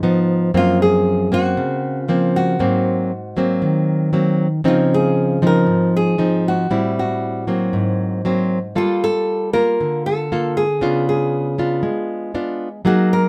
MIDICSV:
0, 0, Header, 1, 3, 480
1, 0, Start_track
1, 0, Tempo, 513699
1, 506, Time_signature, 4, 2, 24, 8
1, 12415, End_track
2, 0, Start_track
2, 0, Title_t, "Nylon-string guitar"
2, 0, Program_c, 0, 24
2, 0, Note_on_c, 0, 68, 72
2, 238, Note_off_c, 0, 68, 0
2, 535, Note_on_c, 0, 65, 92
2, 764, Note_off_c, 0, 65, 0
2, 767, Note_on_c, 0, 68, 91
2, 1246, Note_off_c, 0, 68, 0
2, 1250, Note_on_c, 0, 66, 94
2, 1904, Note_off_c, 0, 66, 0
2, 1904, Note_on_c, 0, 65, 94
2, 2196, Note_off_c, 0, 65, 0
2, 2208, Note_on_c, 0, 66, 79
2, 3840, Note_off_c, 0, 66, 0
2, 4372, Note_on_c, 0, 65, 83
2, 4433, Note_off_c, 0, 65, 0
2, 4620, Note_on_c, 0, 68, 83
2, 5097, Note_off_c, 0, 68, 0
2, 5108, Note_on_c, 0, 70, 92
2, 5570, Note_off_c, 0, 70, 0
2, 5574, Note_on_c, 0, 68, 84
2, 6008, Note_off_c, 0, 68, 0
2, 6056, Note_on_c, 0, 66, 80
2, 6489, Note_off_c, 0, 66, 0
2, 6534, Note_on_c, 0, 66, 71
2, 7922, Note_off_c, 0, 66, 0
2, 8203, Note_on_c, 0, 65, 88
2, 8441, Note_off_c, 0, 65, 0
2, 8445, Note_on_c, 0, 69, 93
2, 8905, Note_off_c, 0, 69, 0
2, 8909, Note_on_c, 0, 70, 93
2, 9398, Note_off_c, 0, 70, 0
2, 9402, Note_on_c, 0, 69, 85
2, 9840, Note_off_c, 0, 69, 0
2, 9876, Note_on_c, 0, 68, 87
2, 10350, Note_off_c, 0, 68, 0
2, 10361, Note_on_c, 0, 68, 75
2, 11753, Note_off_c, 0, 68, 0
2, 12025, Note_on_c, 0, 66, 84
2, 12268, Note_on_c, 0, 70, 80
2, 12270, Note_off_c, 0, 66, 0
2, 12415, Note_off_c, 0, 70, 0
2, 12415, End_track
3, 0, Start_track
3, 0, Title_t, "Nylon-string guitar"
3, 0, Program_c, 1, 24
3, 0, Note_on_c, 1, 44, 67
3, 27, Note_on_c, 1, 53, 54
3, 30, Note_on_c, 1, 59, 49
3, 36, Note_on_c, 1, 63, 56
3, 469, Note_off_c, 1, 53, 0
3, 469, Note_off_c, 1, 59, 0
3, 473, Note_off_c, 1, 63, 0
3, 483, Note_off_c, 1, 44, 0
3, 506, Note_on_c, 1, 53, 52
3, 508, Note_on_c, 1, 42, 71
3, 509, Note_on_c, 1, 58, 60
3, 512, Note_on_c, 1, 60, 61
3, 1187, Note_off_c, 1, 53, 0
3, 1190, Note_off_c, 1, 58, 0
3, 1190, Note_off_c, 1, 60, 0
3, 1232, Note_on_c, 1, 58, 57
3, 1241, Note_on_c, 1, 60, 66
3, 1443, Note_off_c, 1, 42, 0
3, 1470, Note_on_c, 1, 49, 69
3, 1911, Note_off_c, 1, 58, 0
3, 1915, Note_off_c, 1, 60, 0
3, 1949, Note_on_c, 1, 53, 46
3, 1954, Note_on_c, 1, 58, 50
3, 1960, Note_on_c, 1, 60, 54
3, 2389, Note_off_c, 1, 53, 0
3, 2392, Note_off_c, 1, 58, 0
3, 2394, Note_off_c, 1, 60, 0
3, 2404, Note_off_c, 1, 49, 0
3, 2423, Note_on_c, 1, 44, 68
3, 2430, Note_on_c, 1, 54, 57
3, 2431, Note_on_c, 1, 58, 52
3, 2433, Note_on_c, 1, 60, 63
3, 2904, Note_off_c, 1, 58, 0
3, 2905, Note_off_c, 1, 54, 0
3, 2907, Note_off_c, 1, 60, 0
3, 3145, Note_on_c, 1, 54, 49
3, 3153, Note_on_c, 1, 58, 47
3, 3158, Note_on_c, 1, 60, 62
3, 3362, Note_off_c, 1, 44, 0
3, 3381, Note_on_c, 1, 51, 58
3, 3828, Note_off_c, 1, 54, 0
3, 3832, Note_off_c, 1, 58, 0
3, 3834, Note_off_c, 1, 60, 0
3, 3858, Note_on_c, 1, 54, 53
3, 3862, Note_on_c, 1, 58, 49
3, 3866, Note_on_c, 1, 60, 56
3, 4172, Note_off_c, 1, 54, 0
3, 4174, Note_off_c, 1, 58, 0
3, 4176, Note_off_c, 1, 60, 0
3, 4320, Note_off_c, 1, 51, 0
3, 4338, Note_on_c, 1, 49, 71
3, 4344, Note_on_c, 1, 53, 55
3, 4344, Note_on_c, 1, 60, 60
3, 4349, Note_on_c, 1, 63, 57
3, 5026, Note_off_c, 1, 53, 0
3, 5027, Note_off_c, 1, 60, 0
3, 5030, Note_off_c, 1, 63, 0
3, 5066, Note_on_c, 1, 53, 56
3, 5072, Note_on_c, 1, 63, 60
3, 5073, Note_on_c, 1, 60, 53
3, 5279, Note_off_c, 1, 49, 0
3, 5296, Note_on_c, 1, 44, 57
3, 5749, Note_off_c, 1, 53, 0
3, 5750, Note_off_c, 1, 60, 0
3, 5751, Note_off_c, 1, 63, 0
3, 5778, Note_on_c, 1, 53, 55
3, 5784, Note_on_c, 1, 63, 51
3, 5785, Note_on_c, 1, 60, 51
3, 6224, Note_off_c, 1, 53, 0
3, 6226, Note_off_c, 1, 63, 0
3, 6228, Note_off_c, 1, 60, 0
3, 6237, Note_off_c, 1, 44, 0
3, 6263, Note_on_c, 1, 45, 65
3, 6267, Note_on_c, 1, 55, 56
3, 6269, Note_on_c, 1, 60, 59
3, 6273, Note_on_c, 1, 64, 61
3, 6947, Note_off_c, 1, 60, 0
3, 6948, Note_off_c, 1, 55, 0
3, 6951, Note_off_c, 1, 64, 0
3, 6984, Note_on_c, 1, 54, 51
3, 6989, Note_on_c, 1, 58, 46
3, 6993, Note_on_c, 1, 60, 58
3, 7202, Note_off_c, 1, 45, 0
3, 7225, Note_on_c, 1, 44, 64
3, 7667, Note_off_c, 1, 54, 0
3, 7669, Note_off_c, 1, 58, 0
3, 7671, Note_off_c, 1, 60, 0
3, 7709, Note_on_c, 1, 54, 52
3, 7714, Note_on_c, 1, 58, 48
3, 7718, Note_on_c, 1, 60, 57
3, 8017, Note_off_c, 1, 54, 0
3, 8018, Note_off_c, 1, 58, 0
3, 8021, Note_off_c, 1, 60, 0
3, 8161, Note_off_c, 1, 44, 0
3, 8180, Note_on_c, 1, 58, 54
3, 8184, Note_on_c, 1, 55, 70
3, 8186, Note_on_c, 1, 65, 54
3, 8191, Note_on_c, 1, 69, 58
3, 8864, Note_off_c, 1, 58, 0
3, 8866, Note_off_c, 1, 65, 0
3, 8869, Note_off_c, 1, 69, 0
3, 8911, Note_on_c, 1, 58, 55
3, 8915, Note_on_c, 1, 65, 55
3, 9120, Note_off_c, 1, 55, 0
3, 9162, Note_on_c, 1, 50, 64
3, 9589, Note_off_c, 1, 58, 0
3, 9591, Note_off_c, 1, 65, 0
3, 9643, Note_on_c, 1, 58, 55
3, 9647, Note_on_c, 1, 65, 47
3, 9654, Note_on_c, 1, 69, 51
3, 9943, Note_off_c, 1, 58, 0
3, 9944, Note_off_c, 1, 65, 0
3, 9948, Note_off_c, 1, 69, 0
3, 10089, Note_off_c, 1, 50, 0
3, 10104, Note_on_c, 1, 49, 69
3, 10110, Note_on_c, 1, 59, 49
3, 10114, Note_on_c, 1, 62, 50
3, 10117, Note_on_c, 1, 65, 60
3, 10786, Note_off_c, 1, 59, 0
3, 10790, Note_off_c, 1, 62, 0
3, 10790, Note_off_c, 1, 65, 0
3, 10824, Note_on_c, 1, 59, 49
3, 10829, Note_on_c, 1, 62, 51
3, 10833, Note_on_c, 1, 65, 58
3, 11039, Note_off_c, 1, 49, 0
3, 11052, Note_on_c, 1, 56, 65
3, 11504, Note_off_c, 1, 59, 0
3, 11507, Note_off_c, 1, 62, 0
3, 11509, Note_off_c, 1, 65, 0
3, 11535, Note_on_c, 1, 59, 45
3, 11537, Note_on_c, 1, 62, 51
3, 11539, Note_on_c, 1, 65, 58
3, 11847, Note_off_c, 1, 59, 0
3, 11848, Note_off_c, 1, 62, 0
3, 11849, Note_off_c, 1, 65, 0
3, 11992, Note_off_c, 1, 56, 0
3, 12005, Note_on_c, 1, 54, 64
3, 12012, Note_on_c, 1, 58, 57
3, 12012, Note_on_c, 1, 63, 58
3, 12015, Note_on_c, 1, 68, 59
3, 12415, Note_off_c, 1, 54, 0
3, 12415, Note_off_c, 1, 58, 0
3, 12415, Note_off_c, 1, 63, 0
3, 12415, Note_off_c, 1, 68, 0
3, 12415, End_track
0, 0, End_of_file